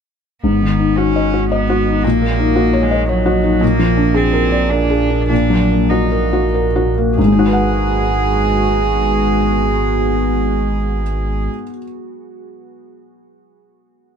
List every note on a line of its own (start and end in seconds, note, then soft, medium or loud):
0.42 2.05 G#1 medium
0.42 2.00 G#2 soft
0.42 2.00 G#3 medium
0.42 0.98 B3 medium
0.42 3.58 F#4 medium
0.42 3.58 D#5 medium
0.62 0.91 D#3 soft
0.79 1.08 D#4 soft
0.96 1.50 C#4 medium
0.96 1.26 F#4 soft
1.16 1.44 D#5 soft
1.33 1.62 F#4 soft
1.50 2.05 B3 medium
1.50 1.80 D#5 soft
1.70 1.97 F#4 soft
1.87 2.04 D#4 soft
2.03 7.18 A#1 medium
2.03 3.58 A#2 medium
2.03 2.84 A#3 medium
2.03 7.18 A#3 medium
2.22 2.50 A#3 soft
2.39 2.67 D#4 soft
2.56 2.84 F#4 soft
2.73 3.02 C#5 soft
2.83 3.08 G#3 medium
2.91 3.19 D#5 soft
3.09 3.63 F#3 medium
3.09 3.37 C#5 soft
3.26 3.54 F#4 soft
3.43 3.61 D#4 soft
3.61 5.26 A#2 medium
3.61 4.17 A#3 medium
3.61 5.30 G#4 medium
3.61 5.30 D5 medium
3.79 4.08 F3 soft
3.97 4.26 D4 soft
4.14 4.72 C4 medium
4.14 4.44 G#4 medium
4.33 4.63 A#4 soft
4.52 4.83 D5 soft
4.70 5.28 D4 medium
4.70 5.02 A#4 soft
4.90 5.22 G#4 soft
5.10 5.30 D4 soft
5.28 7.14 A#2 soft
5.28 5.92 D4 medium
5.28 7.18 F#4 medium
5.28 7.18 A#4 medium
5.50 5.83 F#3 soft
5.71 6.04 A#3 soft
5.90 6.86 D#4 medium
5.90 6.24 F#4 soft
6.11 6.45 A#4 soft
6.33 6.67 F#4 soft
6.54 6.88 A#4 soft
6.76 7.10 F#4 soft
6.98 7.19 A#3 soft
7.17 11.49 G#1 medium
7.17 11.48 G#2 soft
7.17 11.50 B3 medium
7.17 11.50 F#4 medium
7.17 11.47 G#4 medium
7.17 11.50 G#4 medium
7.25 11.55 G#3 soft
7.32 11.62 D#4 medium
7.39 11.69 F#4 soft
7.46 11.76 B4 soft
7.53 11.83 F#5 medium